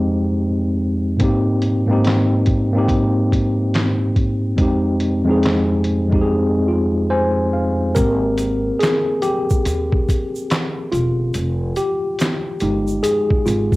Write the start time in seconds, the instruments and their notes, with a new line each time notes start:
Already playing: tine electric piano F2 G#3 C4 D#4 G4
1.17 tine electric piano G#2 A#3 C4, kick, closed hi-hat
1.22 tine electric piano D#4 G4
1.62 closed hi-hat
1.86 tine electric piano G#2 A#3 C4
1.91 tine electric piano D#4 G4
2.04 snare, clap, closed hi-hat
2.46 kick, closed hi-hat
2.71 tine electric piano G#2 A#3 C4
2.76 tine electric piano D#4 G4
2.88 kick, closed hi-hat
3.32 kick, closed hi-hat
3.74 snare, clap, closed hi-hat
4.16 kick, closed hi-hat
4.56 tine electric piano F2 G#3 C4, kick, closed hi-hat
4.61 tine electric piano D#4 G4
5.00 closed hi-hat
5.24 tine electric piano F2 G#3 C4
5.29 tine electric piano D#4 G#4
5.43 snare, clap, closed hi-hat
5.84 closed hi-hat
6.08 tine electric piano F2 G#3 C4
6.12 tine electric piano D#4 G4, kick
6.21 tine electric piano G#4
6.68 tine electric piano F4
7.10 tine electric piano C5 G#5
7.53 tine electric piano F5
7.95 upright bass G#1, tine electric piano A#3 C4 G4 A#4, kick, closed hi-hat, shaker
8.38 closed hi-hat, shaker
8.79 tine electric piano G#4, snare, closed hi-hat, shaker
8.84 clap
9.22 tine electric piano G4, closed hi-hat, shaker
9.50 kick, shaker
9.65 upright bass D#2, closed hi-hat, shaker
9.92 kick
10.09 kick, closed hi-hat, shaker
10.35 shaker
10.50 snare, clap, closed hi-hat, shaker
10.92 upright bass E1, tine electric piano F4, closed hi-hat, shaker
11.34 upright bass F1, closed hi-hat, shaker
11.76 tine electric piano G4, closed hi-hat, shaker
12.19 snare, clap, closed hi-hat, shaker
12.60 upright bass G1, tine electric piano G#3 D#4 G4, closed hi-hat, shaker
12.88 shaker
13.03 tine electric piano G#4, closed hi-hat, shaker
13.31 kick
13.46 upright bass G#1, tine electric piano F4, closed hi-hat, shaker
13.72 kick, shaker